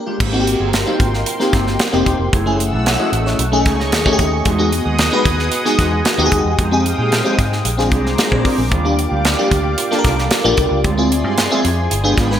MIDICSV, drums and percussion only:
0, 0, Header, 1, 2, 480
1, 0, Start_track
1, 0, Tempo, 531915
1, 182, Time_signature, 4, 2, 24, 8
1, 11187, End_track
2, 0, Start_track
2, 0, Title_t, "Drums"
2, 182, Note_on_c, 9, 36, 101
2, 182, Note_on_c, 9, 49, 86
2, 273, Note_off_c, 9, 36, 0
2, 273, Note_off_c, 9, 49, 0
2, 427, Note_on_c, 9, 42, 69
2, 518, Note_off_c, 9, 42, 0
2, 662, Note_on_c, 9, 42, 73
2, 667, Note_on_c, 9, 38, 108
2, 752, Note_off_c, 9, 42, 0
2, 757, Note_off_c, 9, 38, 0
2, 901, Note_on_c, 9, 36, 102
2, 902, Note_on_c, 9, 42, 74
2, 992, Note_off_c, 9, 36, 0
2, 992, Note_off_c, 9, 42, 0
2, 1026, Note_on_c, 9, 38, 32
2, 1116, Note_off_c, 9, 38, 0
2, 1140, Note_on_c, 9, 42, 94
2, 1230, Note_off_c, 9, 42, 0
2, 1265, Note_on_c, 9, 38, 33
2, 1355, Note_off_c, 9, 38, 0
2, 1381, Note_on_c, 9, 42, 64
2, 1382, Note_on_c, 9, 36, 87
2, 1385, Note_on_c, 9, 38, 36
2, 1471, Note_off_c, 9, 42, 0
2, 1472, Note_off_c, 9, 36, 0
2, 1475, Note_off_c, 9, 38, 0
2, 1505, Note_on_c, 9, 38, 30
2, 1595, Note_off_c, 9, 38, 0
2, 1620, Note_on_c, 9, 42, 91
2, 1624, Note_on_c, 9, 38, 113
2, 1710, Note_off_c, 9, 42, 0
2, 1714, Note_off_c, 9, 38, 0
2, 1862, Note_on_c, 9, 36, 77
2, 1862, Note_on_c, 9, 42, 71
2, 1953, Note_off_c, 9, 36, 0
2, 1953, Note_off_c, 9, 42, 0
2, 2103, Note_on_c, 9, 36, 109
2, 2103, Note_on_c, 9, 42, 76
2, 2193, Note_off_c, 9, 36, 0
2, 2193, Note_off_c, 9, 42, 0
2, 2348, Note_on_c, 9, 42, 61
2, 2439, Note_off_c, 9, 42, 0
2, 2583, Note_on_c, 9, 42, 74
2, 2588, Note_on_c, 9, 38, 120
2, 2673, Note_off_c, 9, 42, 0
2, 2679, Note_off_c, 9, 38, 0
2, 2825, Note_on_c, 9, 42, 72
2, 2915, Note_off_c, 9, 42, 0
2, 2946, Note_on_c, 9, 38, 32
2, 3036, Note_off_c, 9, 38, 0
2, 3060, Note_on_c, 9, 42, 94
2, 3151, Note_off_c, 9, 42, 0
2, 3299, Note_on_c, 9, 42, 62
2, 3302, Note_on_c, 9, 36, 92
2, 3303, Note_on_c, 9, 38, 33
2, 3390, Note_off_c, 9, 42, 0
2, 3392, Note_off_c, 9, 36, 0
2, 3393, Note_off_c, 9, 38, 0
2, 3428, Note_on_c, 9, 38, 32
2, 3518, Note_off_c, 9, 38, 0
2, 3541, Note_on_c, 9, 42, 91
2, 3545, Note_on_c, 9, 38, 118
2, 3631, Note_off_c, 9, 42, 0
2, 3635, Note_off_c, 9, 38, 0
2, 3662, Note_on_c, 9, 36, 82
2, 3752, Note_off_c, 9, 36, 0
2, 3780, Note_on_c, 9, 42, 71
2, 3782, Note_on_c, 9, 36, 79
2, 3870, Note_off_c, 9, 42, 0
2, 3872, Note_off_c, 9, 36, 0
2, 4019, Note_on_c, 9, 42, 82
2, 4022, Note_on_c, 9, 36, 108
2, 4109, Note_off_c, 9, 42, 0
2, 4112, Note_off_c, 9, 36, 0
2, 4264, Note_on_c, 9, 42, 65
2, 4354, Note_off_c, 9, 42, 0
2, 4499, Note_on_c, 9, 42, 75
2, 4505, Note_on_c, 9, 38, 110
2, 4590, Note_off_c, 9, 42, 0
2, 4595, Note_off_c, 9, 38, 0
2, 4741, Note_on_c, 9, 36, 92
2, 4742, Note_on_c, 9, 42, 74
2, 4832, Note_off_c, 9, 36, 0
2, 4832, Note_off_c, 9, 42, 0
2, 4863, Note_on_c, 9, 38, 33
2, 4953, Note_off_c, 9, 38, 0
2, 4978, Note_on_c, 9, 42, 87
2, 5068, Note_off_c, 9, 42, 0
2, 5104, Note_on_c, 9, 38, 34
2, 5194, Note_off_c, 9, 38, 0
2, 5222, Note_on_c, 9, 36, 93
2, 5223, Note_on_c, 9, 42, 61
2, 5226, Note_on_c, 9, 38, 36
2, 5313, Note_off_c, 9, 36, 0
2, 5313, Note_off_c, 9, 42, 0
2, 5317, Note_off_c, 9, 38, 0
2, 5461, Note_on_c, 9, 42, 93
2, 5466, Note_on_c, 9, 38, 110
2, 5552, Note_off_c, 9, 42, 0
2, 5556, Note_off_c, 9, 38, 0
2, 5701, Note_on_c, 9, 42, 69
2, 5702, Note_on_c, 9, 36, 87
2, 5791, Note_off_c, 9, 42, 0
2, 5793, Note_off_c, 9, 36, 0
2, 5943, Note_on_c, 9, 36, 105
2, 5943, Note_on_c, 9, 42, 82
2, 6033, Note_off_c, 9, 42, 0
2, 6034, Note_off_c, 9, 36, 0
2, 6190, Note_on_c, 9, 42, 66
2, 6280, Note_off_c, 9, 42, 0
2, 6426, Note_on_c, 9, 42, 75
2, 6431, Note_on_c, 9, 38, 116
2, 6516, Note_off_c, 9, 42, 0
2, 6521, Note_off_c, 9, 38, 0
2, 6665, Note_on_c, 9, 36, 95
2, 6668, Note_on_c, 9, 42, 76
2, 6755, Note_off_c, 9, 36, 0
2, 6758, Note_off_c, 9, 42, 0
2, 6789, Note_on_c, 9, 38, 31
2, 6879, Note_off_c, 9, 38, 0
2, 6904, Note_on_c, 9, 42, 96
2, 6994, Note_off_c, 9, 42, 0
2, 7028, Note_on_c, 9, 38, 35
2, 7119, Note_off_c, 9, 38, 0
2, 7143, Note_on_c, 9, 42, 59
2, 7144, Note_on_c, 9, 36, 89
2, 7233, Note_off_c, 9, 42, 0
2, 7235, Note_off_c, 9, 36, 0
2, 7272, Note_on_c, 9, 38, 30
2, 7362, Note_off_c, 9, 38, 0
2, 7385, Note_on_c, 9, 42, 91
2, 7390, Note_on_c, 9, 38, 113
2, 7475, Note_off_c, 9, 42, 0
2, 7480, Note_off_c, 9, 38, 0
2, 7507, Note_on_c, 9, 36, 86
2, 7597, Note_off_c, 9, 36, 0
2, 7626, Note_on_c, 9, 36, 86
2, 7626, Note_on_c, 9, 46, 71
2, 7716, Note_off_c, 9, 36, 0
2, 7716, Note_off_c, 9, 46, 0
2, 7865, Note_on_c, 9, 42, 73
2, 7866, Note_on_c, 9, 36, 115
2, 7955, Note_off_c, 9, 42, 0
2, 7956, Note_off_c, 9, 36, 0
2, 8110, Note_on_c, 9, 42, 68
2, 8200, Note_off_c, 9, 42, 0
2, 8345, Note_on_c, 9, 42, 79
2, 8350, Note_on_c, 9, 38, 109
2, 8435, Note_off_c, 9, 42, 0
2, 8440, Note_off_c, 9, 38, 0
2, 8586, Note_on_c, 9, 36, 102
2, 8586, Note_on_c, 9, 42, 74
2, 8676, Note_off_c, 9, 36, 0
2, 8677, Note_off_c, 9, 42, 0
2, 8824, Note_on_c, 9, 42, 103
2, 8914, Note_off_c, 9, 42, 0
2, 8949, Note_on_c, 9, 38, 36
2, 9039, Note_off_c, 9, 38, 0
2, 9064, Note_on_c, 9, 42, 65
2, 9065, Note_on_c, 9, 36, 88
2, 9068, Note_on_c, 9, 38, 38
2, 9154, Note_off_c, 9, 42, 0
2, 9155, Note_off_c, 9, 36, 0
2, 9158, Note_off_c, 9, 38, 0
2, 9189, Note_on_c, 9, 38, 32
2, 9279, Note_off_c, 9, 38, 0
2, 9301, Note_on_c, 9, 42, 94
2, 9305, Note_on_c, 9, 38, 117
2, 9391, Note_off_c, 9, 42, 0
2, 9396, Note_off_c, 9, 38, 0
2, 9542, Note_on_c, 9, 42, 73
2, 9545, Note_on_c, 9, 36, 85
2, 9632, Note_off_c, 9, 42, 0
2, 9635, Note_off_c, 9, 36, 0
2, 9785, Note_on_c, 9, 42, 79
2, 9786, Note_on_c, 9, 36, 103
2, 9876, Note_off_c, 9, 42, 0
2, 9877, Note_off_c, 9, 36, 0
2, 10033, Note_on_c, 9, 42, 67
2, 10123, Note_off_c, 9, 42, 0
2, 10266, Note_on_c, 9, 42, 80
2, 10271, Note_on_c, 9, 38, 115
2, 10356, Note_off_c, 9, 42, 0
2, 10361, Note_off_c, 9, 38, 0
2, 10510, Note_on_c, 9, 42, 79
2, 10600, Note_off_c, 9, 42, 0
2, 10749, Note_on_c, 9, 42, 93
2, 10839, Note_off_c, 9, 42, 0
2, 10986, Note_on_c, 9, 42, 66
2, 10987, Note_on_c, 9, 36, 98
2, 10990, Note_on_c, 9, 38, 38
2, 11077, Note_off_c, 9, 36, 0
2, 11077, Note_off_c, 9, 42, 0
2, 11080, Note_off_c, 9, 38, 0
2, 11115, Note_on_c, 9, 38, 31
2, 11187, Note_off_c, 9, 38, 0
2, 11187, End_track
0, 0, End_of_file